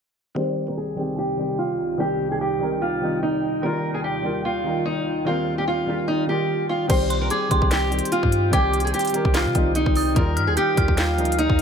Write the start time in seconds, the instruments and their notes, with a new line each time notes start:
0.35 ambient pad C2 C3 D#4 G5, grand piano D#3 G3 C4 G4, steel-string acoustic guitar C5
0.68 steel-string acoustic guitar A#4
0.77 steel-string acoustic guitar G#4
0.95 grand piano D#3 G3 C4 G4
1.18 steel-string acoustic guitar G4
1.36 grand piano D#3 G3 C4 G4
1.58 steel-string acoustic guitar F4
1.98 grand piano D#3 G3 C4 G4, steel-string acoustic guitar G4
2.31 steel-string acoustic guitar G#4
2.41 steel-string acoustic guitar G4
2.59 grand piano D#3 G3 C4 A#4
2.82 steel-string acoustic guitar F4
3.01 grand piano D#3 G3 C4 D#4
3.23 steel-string acoustic guitar D#4
3.62 ambient pad D#2 D#3 F4, grand piano D#3 G3 A#3 F4, steel-string acoustic guitar A#4
3.94 steel-string acoustic guitar G#4
4.04 steel-string acoustic guitar G4
4.22 grand piano D#3 G3 A#3 F4
4.45 steel-string acoustic guitar F4
4.64 grand piano D#3 G3 A#3 D#4
4.85 steel-string acoustic guitar D#4
5.25 grand piano D#3 G3 A#3 C4, steel-string acoustic guitar F4
5.58 steel-string acoustic guitar G4
5.68 steel-string acoustic guitar F4
5.86 grand piano D#3 G3 A#3 F4
6.08 steel-string acoustic guitar D#4
6.27 grand piano D#3 G3 A#3 F4, steel-string acoustic guitar G4
6.69 steel-string acoustic guitar F4
6.88 808-style bass C2, grand piano D#3 G3 C4 G4, ambient pad D#4 C5 G5, steel-string acoustic guitar C5, kick, closed hi-hat, crash
7.10 synth bell C6, closed hi-hat
7.21 steel-string acoustic guitar A#4
7.30 steel-string acoustic guitar G#4, synth bell D6, closed hi-hat
7.49 808-style bass C2, grand piano D#3 G3 C4 G4, synth bell C6, kick, closed hi-hat
7.62 808-style bass C2, kick
7.71 steel-string acoustic guitar G4, snare, closed hi-hat
7.90 grand piano D#3 G3 C4 G4, closed hi-hat
7.99 closed hi-hat
8.05 closed hi-hat
8.12 steel-string acoustic guitar F4, closed hi-hat
8.23 808-style bass G2, kick
8.32 closed hi-hat
8.51 808-style bass C2, grand piano D#3 G3 C4 G4, steel-string acoustic guitar G4, synth bell D6, kick, closed hi-hat
8.73 closed hi-hat
8.80 closed hi-hat
8.85 steel-string acoustic guitar G#4, closed hi-hat
8.94 steel-string acoustic guitar G4, closed hi-hat
8.99 closed hi-hat
9.05 closed hi-hat
9.07 closed hi-hat
9.09 grand piano D#3 G3, closed hi-hat
9.14 grand piano C4 A#4, closed hi-hat
9.25 808-style bass C2, kick
9.34 steel-string acoustic guitar F4, snare, closed hi-hat
9.45 808-style bass C3
9.54 808-style bass C2, grand piano D#3 G3 C4 D#4, kick, closed hi-hat
9.75 steel-string acoustic guitar D#4, closed hi-hat
9.86 808-style bass C2, kick
9.95 synth bell D#6, open hi-hat
10.15 808-style bass D#2, grand piano D#3 G3 A#3 F4, steel-string acoustic guitar A#4, ambient pad A#4 F5, kick, closed hi-hat
10.37 808-style bass G2, synth bell F6, closed hi-hat
10.47 808-style bass D#2, steel-string acoustic guitar G#4
10.57 steel-string acoustic guitar G4, synth bell G6, closed hi-hat
10.75 808-style bass D#2, grand piano D#3 G3 A#3 F4, synth bell F6, kick, closed hi-hat
10.88 kick
10.97 steel-string acoustic guitar F4, snare, closed hi-hat
11.17 808-style bass D2, grand piano F3 G3 A#3 D#4, closed hi-hat
11.25 closed hi-hat
11.32 closed hi-hat
11.39 steel-string acoustic guitar D#4, closed hi-hat
11.50 808-style bass D#2, kick
11.59 closed hi-hat